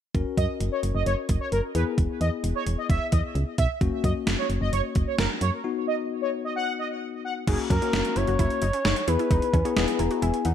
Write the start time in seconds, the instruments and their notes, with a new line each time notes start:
0.15 fm bass F#1, tine electric piano C#4 F#4 A#4, kick, closed hi-hat
0.37 fm bass F#2, analog polysynth D#5, kick, closed hi-hat
0.60 fm bass F#1, closed hi-hat
0.72 analog polysynth C#5
0.83 fm bass F#1, closed hi-hat
0.95 fm bass F#1, analog polysynth D#5
1.06 fm bass F#1, analog polysynth C#5, closed hi-hat
1.29 fm bass F#1, kick, closed hi-hat
1.41 analog polysynth C#5
1.52 fm bass F#1, analog polysynth A#4, closed hi-hat
1.75 fm bass E2, tine electric piano B3 E4 G#4, analog polysynth B4, closed hi-hat
1.98 fm bass E1, kick, closed hi-hat
2.21 fm bass E2, analog polysynth D#5, closed hi-hat
2.44 fm bass E1, closed hi-hat
2.55 analog polysynth C#5
2.67 fm bass E1, closed hi-hat
2.78 analog polysynth D#5
2.90 fm bass E1, analog polysynth E5, kick, closed hi-hat
3.12 fm bass E2, analog polysynth D#5, kick, closed hi-hat
3.35 fm bass C#2, closed hi-hat
3.58 fm bass B1, analog polysynth E5, kick, closed hi-hat
3.81 fm bass F#1, tine electric piano A#3 C#4 F#4, kick, closed hi-hat
4.04 fm bass F#2, analog polysynth D#5, kick, closed hi-hat
4.27 fm bass F#1, snare, closed hi-hat
4.38 analog polysynth C#5
4.50 fm bass F#1, closed hi-hat
4.61 fm bass F#1, analog polysynth D#5
4.73 fm bass F#1, analog polysynth C#5, closed hi-hat
4.95 fm bass F#1, kick, closed hi-hat
5.07 analog polysynth C#5
5.18 fm bass F#1, analog polysynth A#4, snare, closed hi-hat
5.41 fm bass F#2, analog polysynth C#5, closed hi-hat
5.64 tine electric piano B3 D#4 F#4
5.87 analog polysynth D#5
6.22 analog polysynth C#5
6.44 analog polysynth D#5
6.56 analog polysynth F#5
6.79 analog polysynth D#5
7.25 analog polysynth F#5
7.47 fm bass F#1, tine electric piano A#3 C#4 F#4, synth arpeggio sound D#4, analog synth lead G#4, kick, closed hi-hat, crash
7.59 closed hi-hat
7.70 fm bass F#2, synth arpeggio sound C#4, analog synth lead A#4, kick, closed hi-hat
7.82 tine electric piano A#3 C#4 F#4, synth arpeggio sound C#4, closed hi-hat
7.93 fm bass F#1, tine electric piano A#3 C#4 F#4, synth arpeggio sound D#4, snare, closed hi-hat
8.05 closed hi-hat
8.16 fm bass F#1, synth arpeggio sound E4, analog synth lead C#5, closed hi-hat
8.27 fm bass F#1, synth arpeggio sound F#4, closed hi-hat
8.39 fm bass F#1, synth arpeggio sound E4, analog synth lead C#5, kick, closed hi-hat
8.50 closed hi-hat
8.62 fm bass F#1, synth arpeggio sound D#4, closed hi-hat
8.73 synth arpeggio sound C#4, closed hi-hat
8.85 fm bass F#1, synth arpeggio sound D#4, snare, closed hi-hat
8.96 closed hi-hat
9.08 fm bass E2, tine electric piano B3 E4 G#4, synth arpeggio sound E4, analog synth lead B4, closed hi-hat
9.19 synth arpeggio sound E4, closed hi-hat
9.31 fm bass E1, synth arpeggio sound D#4, kick, closed hi-hat
9.42 closed hi-hat
9.54 fm bass E2, synth arpeggio sound C#4, kick, closed hi-hat
9.65 tine electric piano B3 E4 G#4, synth arpeggio sound C#4, closed hi-hat
9.77 fm bass E1, tine electric piano B3 E4 G#4, synth arpeggio sound D#4, snare, closed hi-hat
9.88 closed hi-hat
9.99 fm bass E1, synth arpeggio sound E4, tine electric piano A#5, closed hi-hat
10.11 synth arpeggio sound F#4, closed hi-hat
10.22 fm bass E1, synth arpeggio sound E4, tine electric piano G#5, closed hi-hat
10.34 closed hi-hat
10.45 fm bass E2, synth arpeggio sound D#4, tine electric piano F#5, closed hi-hat